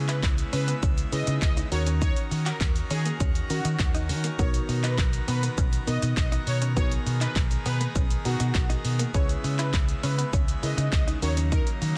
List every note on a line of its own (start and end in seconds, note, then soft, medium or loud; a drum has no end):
0.00 0.25 C#3 loud
0.00 1.70 C#3 medium
0.00 1.70 G#3 medium
0.00 1.68 B3 medium
0.00 0.25 C#4 medium
0.00 0.25 E4 medium
0.00 1.70 E4 medium
0.00 0.25 G#4 medium
0.00 0.25 B4 medium
0.09 0.19 E4 medium
0.09 0.19 B4 medium
0.09 clap medium
0.09 closed hi-hat medium
0.09 shaker medium
0.23 0.42 C#2 loud
0.23 muted clean electric guitar stroke soft
0.23 kick loud
0.23 clap loud
0.23 shaker medium
0.38 closed hi-hat medium
0.38 shaker medium
0.53 0.72 C#3 loud
0.53 0.64 C#4 medium
0.53 0.75 B4 medium
0.53 open hi-hat medium
0.53 shaker medium
0.68 0.79 B3 medium
0.68 closed hi-hat medium
0.68 shaker medium
0.83 1.02 C#2 loud
0.83 0.93 C#4 medium
0.83 kick loud
0.83 shaker medium
0.98 closed hi-hat medium
0.98 shaker medium
1.12 1.22 C#3 loud
1.12 1.58 C#4 medium
1.12 1.58 E4 medium
1.12 1.58 G#4 medium
1.12 1.59 B4 medium
1.12 1.34 D#5 medium
1.12 muted clean electric guitar stroke soft
1.12 open hi-hat medium
1.12 shaker medium
1.27 1.37 C#3 loud
1.27 1.38 D#4 medium
1.27 closed hi-hat medium
1.27 shaker medium
1.42 1.61 C#2 loud
1.42 1.53 D#5 medium
1.42 kick loud
1.42 clap loud
1.42 shaker medium
1.57 1.68 D#4 medium
1.57 closed hi-hat medium
1.57 shaker medium
1.72 2.10 D#2 loud
1.72 4.37 D#3 medium
1.72 2.67 C#4 medium
1.72 4.37 C#4 medium
1.72 2.67 D#4 medium
1.72 6.73 F#4 medium
1.72 2.67 F#4 medium
1.72 9.10 A#4 medium
1.72 2.67 A#4 medium
1.72 1.83 C#5 medium
1.72 muted clean electric guitar stroke soft
1.72 open hi-hat medium
1.72 shaker medium
1.87 1.97 C#4 medium
1.87 closed hi-hat medium
1.87 shaker medium
2.02 2.12 D#4 medium
2.02 2.12 C#5 loud
2.02 kick loud
2.02 shaker medium
2.16 closed hi-hat medium
2.16 shaker medium
2.31 2.51 D#3 loud
2.31 muted clean electric guitar stroke soft
2.31 open hi-hat medium
2.31 shaker soft
2.46 2.57 F#4 medium
2.46 2.57 A#4 medium
2.46 clap medium
2.46 closed hi-hat medium
2.46 shaker medium
2.61 2.80 D#2 loud
2.61 muted clean electric guitar stroke soft
2.61 kick loud
2.61 clap loud
2.61 shaker medium
2.76 closed hi-hat medium
2.76 shaker medium
2.91 3.10 D#3 loud
2.91 3.01 C#4 medium
2.91 3.12 G#4 medium
2.91 open hi-hat medium
2.91 shaker medium
3.05 3.16 A#3 medium
3.05 closed hi-hat medium
3.05 shaker medium
3.20 3.40 D#2 loud
3.20 3.31 C#4 medium
3.20 kick loud
3.20 shaker medium
3.35 closed hi-hat medium
3.35 shaker medium
3.50 3.60 D#3 loud
3.50 3.96 C#4 medium
3.50 3.96 D#4 medium
3.50 3.92 F#4 medium
3.50 3.96 F#4 medium
3.50 3.96 A#4 medium
3.50 muted clean electric guitar stroke soft
3.50 open hi-hat medium
3.50 shaker medium
3.65 3.74 D#3 medium
3.65 3.75 D#4 medium
3.65 closed hi-hat medium
3.65 shaker medium
3.79 4.11 D#2 loud
3.79 kick loud
3.79 clap loud
3.79 shaker medium
3.95 4.05 D#4 medium
3.95 closed hi-hat medium
3.95 shaker medium
4.09 4.29 D#3 loud
4.09 muted clean electric guitar stroke soft
4.09 open hi-hat medium
4.09 shaker medium
4.24 4.35 A#3 medium
4.24 closed hi-hat medium
4.24 shaker medium
4.39 4.58 B1 loud
4.39 9.10 D#3 medium
4.39 5.00 B3 medium
4.39 4.50 B3 medium
4.39 11.18 B3 medium
4.39 5.00 D#4 medium
4.39 5.00 F#4 medium
4.39 5.01 A#4 medium
4.39 4.50 C#5 loud
4.39 kick loud
4.39 shaker medium
4.54 closed hi-hat medium
4.54 shaker medium
4.69 5.00 B2 loud
4.69 muted clean electric guitar stroke soft
4.69 open hi-hat medium
4.69 shaker soft
4.84 4.94 D#4 medium
4.84 4.94 B4 medium
4.84 clap medium
4.84 closed hi-hat medium
4.84 shaker medium
4.98 5.18 B1 loud
4.98 muted clean electric guitar stroke soft
4.98 kick loud
4.98 clap loud
4.98 shaker medium
5.13 closed hi-hat medium
5.13 shaker medium
5.28 5.48 B2 loud
5.28 5.39 B3 medium
5.28 5.50 B4 medium
5.28 open hi-hat medium
5.28 shaker medium
5.43 5.54 A#3 medium
5.43 closed hi-hat medium
5.43 shaker medium
5.58 5.77 B1 loud
5.58 5.68 C#4 medium
5.58 kick loud
5.58 shaker medium
5.73 closed hi-hat medium
5.73 shaker medium
5.87 5.97 B2 loud
5.87 6.33 B3 medium
5.87 6.33 D#4 medium
5.87 6.34 F#4 medium
5.87 6.34 A#4 medium
5.87 6.09 D#5 medium
5.87 muted clean electric guitar stroke soft
5.87 open hi-hat medium
5.87 shaker medium
6.02 6.12 B2 loud
6.02 6.13 D#4 medium
6.02 closed hi-hat medium
6.02 shaker medium
6.17 6.36 B1 loud
6.17 6.28 D#5 medium
6.17 kick loud
6.17 clap loud
6.17 shaker medium
6.32 6.43 D#4 medium
6.32 closed hi-hat medium
6.32 shaker medium
6.47 6.78 B2 loud
6.47 6.58 C#5 medium
6.47 muted clean electric guitar stroke soft
6.47 open hi-hat medium
6.47 shaker medium
6.62 6.72 C#4 medium
6.62 closed hi-hat medium
6.62 shaker medium
6.76 6.96 B1 loud
6.76 7.38 B3 medium
6.76 6.87 B3 loud
6.76 7.38 D#4 medium
6.76 7.38 F#4 medium
6.76 9.12 G#4 medium
6.76 7.38 A#4 medium
6.76 6.87 C#5 loud
6.76 kick loud
6.76 shaker medium
6.92 closed hi-hat medium
6.92 shaker medium
7.06 7.26 B2 loud
7.06 muted clean electric guitar stroke soft
7.06 open hi-hat medium
7.06 shaker soft
7.21 7.32 D#4 medium
7.21 7.32 B4 medium
7.21 clap medium
7.21 closed hi-hat medium
7.21 shaker medium
7.36 7.55 B1 loud
7.36 muted clean electric guitar stroke soft
7.36 kick loud
7.36 clap loud
7.36 shaker medium
7.51 closed hi-hat medium
7.51 shaker medium
7.66 7.85 B2 loud
7.66 7.76 B3 medium
7.66 7.88 B4 medium
7.66 open hi-hat medium
7.66 shaker medium
7.81 7.91 A#3 medium
7.81 closed hi-hat medium
7.81 shaker medium
7.95 8.15 B1 loud
7.95 8.06 C#4 medium
7.95 kick loud
7.95 shaker medium
8.10 closed hi-hat medium
8.10 shaker medium
8.25 8.35 B2 medium
8.25 8.71 B3 medium
8.25 8.71 D#4 medium
8.25 8.67 F#4 medium
8.25 8.71 F#4 medium
8.25 8.71 A#4 medium
8.25 muted clean electric guitar stroke soft
8.25 open hi-hat medium
8.25 shaker medium
8.40 8.50 B2 loud
8.40 8.51 D#4 medium
8.40 closed hi-hat medium
8.40 shaker medium
8.55 8.74 B1 loud
8.55 kick loud
8.55 clap loud
8.55 shaker medium
8.70 8.80 D#4 medium
8.70 closed hi-hat medium
8.70 shaker medium
8.85 9.04 B2 loud
8.85 muted clean electric guitar stroke soft
8.85 open hi-hat medium
8.85 shaker medium
8.99 9.10 A#3 medium
8.99 closed hi-hat medium
8.99 shaker medium
9.14 9.34 C#2 loud
9.14 11.98 C#3 medium
9.14 11.20 G#3 medium
9.14 9.76 C#4 medium
9.14 9.25 C#4 medium
9.14 9.76 E4 medium
9.14 11.20 E4 medium
9.14 9.76 G#4 medium
9.14 9.76 B4 medium
9.14 9.25 C#5 loud
9.14 kick loud
9.14 shaker medium
9.29 closed hi-hat medium
9.29 shaker medium
9.44 9.75 C#3 loud
9.44 muted clean electric guitar stroke soft
9.44 open hi-hat medium
9.44 shaker soft
9.59 9.70 E4 medium
9.59 9.70 B4 medium
9.59 clap medium
9.59 closed hi-hat medium
9.59 shaker medium
9.74 9.93 C#2 loud
9.74 muted clean electric guitar stroke soft
9.74 kick loud
9.74 clap loud
9.74 shaker medium
9.89 closed hi-hat medium
9.89 shaker soft
10.03 10.23 C#3 loud
10.03 10.14 C#4 medium
10.03 10.25 B4 medium
10.03 open hi-hat medium
10.03 shaker medium
10.18 10.29 B3 medium
10.18 closed hi-hat medium
10.18 shaker medium
10.33 10.53 C#2 loud
10.33 10.44 C#4 medium
10.33 kick loud
10.33 shaker medium
10.48 closed hi-hat medium
10.48 shaker medium
10.63 10.73 C#3 loud
10.63 11.09 C#4 medium
10.63 11.09 E4 medium
10.63 11.09 G#4 medium
10.63 11.09 A#4 medium
10.63 10.85 D#5 medium
10.63 muted clean electric guitar stroke soft
10.63 open hi-hat medium
10.63 shaker medium
10.78 10.87 C#3 loud
10.78 10.88 D#4 medium
10.78 closed hi-hat medium
10.78 shaker medium
10.92 11.12 C#2 loud
10.92 11.03 D#5 medium
10.92 kick loud
10.92 clap loud
10.92 shaker medium
11.07 11.18 D#4 medium
11.07 closed hi-hat medium
11.07 shaker medium
11.22 11.61 D#2 loud
11.22 11.98 F#3 medium
11.22 11.98 A#3 medium
11.22 11.98 C#4 medium
11.22 11.98 D#4 medium
11.22 11.98 F#4 medium
11.22 11.98 A#4 medium
11.22 11.33 C#5 medium
11.22 muted clean electric guitar stroke soft
11.22 open hi-hat medium
11.22 shaker medium
11.37 11.48 C#4 medium
11.37 closed hi-hat medium
11.37 shaker medium
11.52 11.63 D#4 loud
11.52 11.63 A#4 loud
11.52 kick loud
11.52 shaker medium
11.67 closed hi-hat medium
11.67 shaker medium
11.82 11.98 D#3 medium
11.82 muted clean electric guitar stroke soft
11.82 open hi-hat medium
11.82 shaker soft